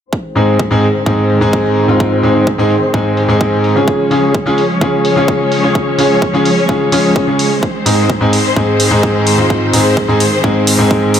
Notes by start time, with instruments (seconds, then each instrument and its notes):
0.13 string section D#3 G#3 C4 G#4 C5, kick
0.35 grand piano G#2 G#3 C4 D#4 G#4, open hi-hat
0.59 kick
0.71 grand piano G#2 G#3 C4 D#4 G#4
0.83 open hi-hat
1.06 grand piano G#2 G#3 C4 D#4 G#4, kick
1.30 open hi-hat
1.41 grand piano G#2 G#3 C4 D#4 G#4
1.53 kick
1.77 open hi-hat
1.88 grand piano G#2 G#3 C4 D#4 F4
2.00 kick
2.23 grand piano G#2 G#3 C4 D#4 G#4, open hi-hat
2.47 kick
2.58 grand piano G#2 G#3 C4 D#4 G#4
2.70 open hi-hat
2.93 grand piano G#2 G#3 C4 D#4 G#4, kick
3.17 open hi-hat
3.28 grand piano G#2 G#3 C4 D#4 G#4
3.41 kick
3.64 open hi-hat
3.75 grand piano C#3 G#3 C#4 F4 G#4
3.88 string section F3 C#4 C#5, kick
4.10 grand piano C#3 G#3 C#4 F4 G#4, open hi-hat
4.35 kick
4.46 grand piano C#3 G#3 C#4 F4 G#4
4.58 open hi-hat
4.81 grand piano C#3 G#3 C#4 F4 G#4, kick
5.05 open hi-hat
5.16 grand piano C#3 G#3 C#4 F4 G#4
5.28 kick
5.52 open hi-hat
5.63 grand piano C#3 G#3 C#4 F4 G#4
5.75 kick
5.98 grand piano C#3 G#3 C#4 F4 G#4, open hi-hat
6.22 kick
6.33 grand piano C#3 G#3 C#4 F4 G#4
6.45 open hi-hat
6.68 grand piano C#3 G#3 C#4 F4 G#4, kick
6.92 grand piano C#3 G#3 C#4 F4 G#4, open hi-hat
7.16 kick
7.27 grand piano C#3 G#3 C#4 F4 G#4
7.39 open hi-hat
7.63 string section D#3 C4 G#4 C5, kick
7.86 grand piano G#2 G#3 C4 D#4 G#4, open hi-hat
8.10 kick
8.21 grand piano G#2 G#3 C4 D#4 G#4
8.33 open hi-hat
8.56 grand piano G#2 G#3 C4 D#4 G#4, kick
8.80 open hi-hat
8.91 grand piano G#2 G#3 C4 D#4 G#4
9.03 kick
9.27 open hi-hat
9.38 grand piano G#2 G#3 C4 D#4 F4
9.50 kick
9.73 grand piano G#2 G#3 C4 D#4 G#4, open hi-hat
9.97 kick
10.08 grand piano G#2 G#3 C4 D#4 G#4
10.20 open hi-hat
10.43 grand piano G#2 G#3 C4 D#4 G#4, kick
10.67 open hi-hat
10.78 grand piano G#2 G#3 C4 D#4 G#4
10.91 kick
11.14 open hi-hat